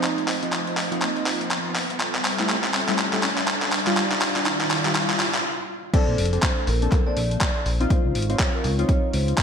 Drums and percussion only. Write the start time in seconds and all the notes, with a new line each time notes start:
0.03 clap, closed hi-hat
0.18 closed hi-hat
0.28 clap, open hi-hat
0.43 closed hi-hat
0.53 clap, closed hi-hat
0.67 closed hi-hat
0.77 clap, open hi-hat
0.92 closed hi-hat
1.02 clap, closed hi-hat
1.17 closed hi-hat
1.26 clap, open hi-hat
1.41 closed hi-hat
1.51 clap, closed hi-hat
1.76 clap, open hi-hat
1.90 closed hi-hat
2.00 clap, closed hi-hat
2.15 clap, closed hi-hat
2.25 clap, open hi-hat
2.39 clap, closed hi-hat
2.49 clap, closed hi-hat
2.64 clap, closed hi-hat
2.74 clap, open hi-hat
2.89 clap, closed hi-hat
2.99 clap, closed hi-hat
3.13 clap, closed hi-hat
3.23 clap, open hi-hat
3.38 clap, closed hi-hat
3.48 clap, closed hi-hat
3.62 clap
3.72 clap, open hi-hat
3.87 clap, closed hi-hat
3.97 clap, closed hi-hat
4.12 clap, closed hi-hat
4.21 clap, open hi-hat
4.36 clap, closed hi-hat
4.46 clap, closed hi-hat
4.61 clap, closed hi-hat
4.71 clap, open hi-hat
4.85 clap, closed hi-hat
4.95 clap, closed hi-hat
5.10 clap, closed hi-hat
5.20 clap, open hi-hat
5.34 clap, closed hi-hat
5.94 kick, closed hi-hat, crash
6.18 open hi-hat
6.26 closed hi-hat
6.33 closed hi-hat
6.43 kick, clap, closed hi-hat
6.67 open hi-hat
6.82 closed hi-hat
6.92 kick, clap, closed hi-hat
7.17 open hi-hat
7.31 closed hi-hat
7.41 kick, clap, closed hi-hat
7.66 open hi-hat
7.81 closed hi-hat
7.90 kick, closed hi-hat
8.15 open hi-hat
8.22 closed hi-hat
8.30 closed hi-hat
8.39 kick, clap, closed hi-hat
8.64 open hi-hat
8.79 closed hi-hat
8.89 kick, closed hi-hat
9.13 open hi-hat
9.28 closed hi-hat
9.38 kick, clap, closed hi-hat